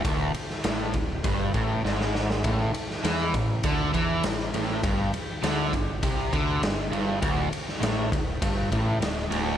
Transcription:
<<
  \new Staff \with { instrumentName = "Overdriven electric guitar" } { \clef bass \time 4/4 \key a \dorian \tempo 4 = 100 d,8 r8 a,8 d,8 g,8 a,8 gis,4 | a,8 r8 e8 a,8 d8 e8 a,8 a,8 | g,8 r8 d8 g,8 c8 d8 g,8 g,8 | d,8 r8 a,8 d,8 g,8 a,8 d,8 d,8 | }
  \new Staff \with { instrumentName = "Picked electric bass" } { \clef bass \time 4/4 \key a \dorian d,,8 r8 a,,8 d,,8 g,,8 a,,8 gis,,4 | a,,8 r8 e,8 a,,8 d,8 e,8 a,,8 a,,8 | g,,8 r8 d,8 g,,8 c,8 d,8 g,,8 g,,8 | d,,8 r8 a,,8 d,,8 g,,8 a,,8 d,,8 d,,8 | }
  \new DrumStaff \with { instrumentName = "Drums" } \drummode { \time 4/4 <bd cymr>8 cymr16 sn16 <cymr sn>8 <bd cymr>8 <bd cymr>8 <bd cymr>8 sn16 sn16 sn16 sn16 | <bd cymr>8 cymr16 sn16 <cymr sn>8 <bd cymr>8 <bd cymr>8 <bd cymr>8 <cymr sn>16 sn16 cymr8 | <bd cymr>8 cymr8 <cymr sn>8 <bd cymr>8 <bd cymr>8 <bd cymr>8 <cymr sn>8 cymr8 | <bd cymr>8 cymr16 sn16 <cymr sn>8 <bd cymr>8 <bd cymr>8 <bd cymr>8 <cymr sn>16 sn16 cymr8 | }
>>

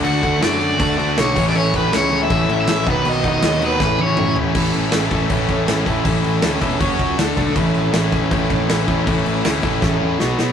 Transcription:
<<
  \new Staff \with { instrumentName = "Overdriven electric guitar" } { \time 4/4 \key a \major \tempo 4 = 160 fis''4 d''2 cis''8. d''16 | cis''8 b'8 cis''8. e''4 e''8. b'8 | dis''8 dis''4 b'8 b'8 cis''4 r8 | r1 |
r1 | r1 | r1 | }
  \new Staff \with { instrumentName = "Distorted electric guitar" } { \time 4/4 \key a \major <d a d' fis' a'>8 <d a d' fis' a'>8 <d a d' fis' a'>8 <d a d' fis' a'>8 <d a d' fis' a'>8 <d a d' fis' a'>8 <d a d' fis' a'>8 <a, e a cis' e' a'>8 | <a, e a cis' e' a'>8 <a, e a cis' e' a'>8 <a, e a cis' e' a'>8 <a, e a cis' e' a'>8 <a, e a cis' e' a'>8 <a, e a cis' e' a'>8 <a, e a cis' e' a'>8 <b, dis fis b fis'>8 | <b, dis fis b fis'>8 <b, dis fis b fis'>8 <b, dis fis b fis'>8 <b, dis fis b fis'>8 <a, e a cis' e'>8 <a, e a cis' e'>8 <a, e a cis' e'>8 <a, e a cis' e'>8 | <a, e a cis' e' a'>4 <a, e a cis' e' a'>8 <a, e a cis' e' a'>8 <a, e a cis' e' a'>4 <a, e a cis' e' a'>8 <a, e a cis' e' a'>8 |
<a, e a cis' e' a'>4 <a, e a cis' e' a'>8 <a, e a cis' e' a'>8 <fis cis' fis' cis''>4 <d a d' a'>8 <d a d' a'>8 | <a, e a cis' e' a'>4 <a, e a cis' e' a'>8 <a, e a cis' e' a'>8 <a, e a cis' e' a'>4 <a, e a cis' e' a'>8 <a, e a cis' e' a'>8 | <a, e a cis' e' a'>4 <a, e a cis' e' a'>8 <a, e a cis' e' a'>8 <a, e a cis' e' a'>4 <b, fis b fis'>8 <b, fis b fis'>8 | }
  \new Staff \with { instrumentName = "Distorted electric guitar" } { \time 4/4 \key a \major <d a d' fis'>8 <d a d' fis'>8 <d a d' fis'>8 <d a d' fis'>8 <d a d' fis'>8 <d a d' fis'>8 <d a d' fis'>8 <a, e a cis' e'>8 | <a, e a cis' e'>8 <a, e a cis' e'>8 <a, e a cis' e'>8 <a, e a cis' e'>8 <a, e a cis' e'>8 <a, e a cis' e'>8 <a, e a cis' e'>8 <b, dis fis b dis'>8 | <b, dis fis b dis'>8 <b, dis fis b dis'>8 <b, dis fis b dis'>8 <b, dis fis b dis'>8 <a, e a cis' e'>8 <a, e a cis' e'>8 <a, e a cis' e'>8 <a, e a cis' e'>8 | <a, e a cis' e' a'>4 <a, e a cis' e' a'>8 <a, e a cis' e' a'>8 <a, e a cis' e' a'>4 <a, e a cis' e' a'>8 <a, e a cis' e' a'>8 |
<a, e a cis' e' a'>4 <a, e a cis' e' a'>8 <a, e a cis' e' a'>8 <fis cis' fis' cis''>4 <d a d' a'>8 <d a d' a'>8 | <a, e a cis' e'>4 <a, e a cis' e'>8 <a, e a cis' e'>8 <a, e a cis' e'>4 <a, e a cis' e'>8 <a, e a cis' e'>8 | <a, e a cis' e'>4 <a, e a cis' e'>8 <a, e a cis' e'>8 <a, e a cis' e'>4 <b, fis b fis'>8 <b, fis b fis'>8 | }
  \new Staff \with { instrumentName = "Picked electric bass" } { \clef bass \time 4/4 \key a \major d,8 d,8 fis,4 d,8 d,8 b,,8 a,,8 | a,,8 a,,8 cis,4 a,,8 a,,8 a,,8 b,,8 | b,,8 b,,8 dis,4 a,,8 a,,8 a,,8 a,,8 | a,,8 a,,8 a,,8 a,,8 a,,8 a,8 a,,8 a,,8 |
a,,8 a,,8 d,8 e,,8 fis,,8 cis,8 d,8 b,,8 | a,,8 a,,8 a,,8 a,,8 a,,8 a,8 a,,8 a,,8 | a,,8 a,,8 d,8 a,,8 a,,8 e,8 b,,8 b,8 | }
  \new DrumStaff \with { instrumentName = "Drums" } \drummode { \time 4/4 cymc8 <cymc bd>8 <cymc sn>8 cymc8 <cymc bd>8 cymc8 <cymc sn>8 <cymc bd>8 | cymc8 <cymc bd>8 <cymc sn>8 cymc8 <cymc bd>8 cymc8 <cymc sn>8 <cymc bd>8 | cymc8 <cymc bd>8 <cymc sn>8 cymc8 <bd sn>8 tommh8 toml8 tomfh8 | <cymc bd>8 cymc8 <cymc sn>8 <cymc bd>8 <cymc bd>8 <cymc bd>8 <cymc sn>8 <cymc bd>8 |
<cymc bd>8 cymc8 <cymc sn>8 <cymc bd>8 <cymc bd>8 <cymc bd>8 <cymc sn>8 <cymc bd>8 | <cymc bd>8 cymc8 <cymc sn>8 <cymc bd>8 <cymc bd>8 <cymc bd>8 <cymc sn>8 <cymc bd>8 | <cymc bd>8 cymc8 <cymc sn>8 <cymc bd>8 <bd sn>4 sn8 sn8 | }
>>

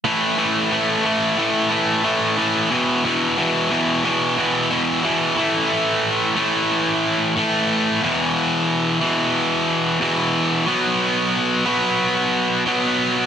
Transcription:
\new Staff \with { instrumentName = "Distorted electric guitar" } { \clef bass \time 4/4 \key e \minor \tempo 4 = 90 <a, e a>8 <a, e a>8 <a, e a>8 <a, e a>8 <a, e a>8 <a, e a>8 <a, e a>8 <a, e a>8 | <e, b, e>8 <e, b, e>8 <e, b, e>8 <e, b, e>8 <e, b, e>8 <e, b, e>8 <e, b, e>8 <e, b, e>8 | <a, e a>4. <a, e a>4. <a, e a>4 | <e, b, e>4. <e, b, e>4. <e, b, e>4 |
<b, fis b>4. <b, fis b>4. <b, fis b>4 | }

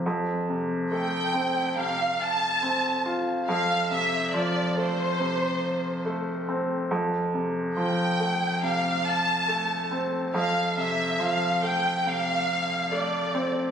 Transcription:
<<
  \new Staff \with { instrumentName = "Violin section" } { \time 4/4 \key f \major \tempo 4 = 70 r4 g''4 f''8 a''4 r8 | f''8 e''8 d''8 c''4. r4 | r4 g''4 f''8 a''4 r8 | f''8 e''8 f''8 g''8 f''4 d''8. r16 | }
  \new Staff \with { instrumentName = "Grand piano" } { \clef bass \time 4/4 \key f \major f,8 c8 a8 c'8 c4 c'8 f'8 | f,8 c8 f8 a8 c4 a8 c'8 | f,8 c8 f8 a8 c4 a8 c'8 | f,8 c8 f8 a8 c4 a8 c'8 | }
>>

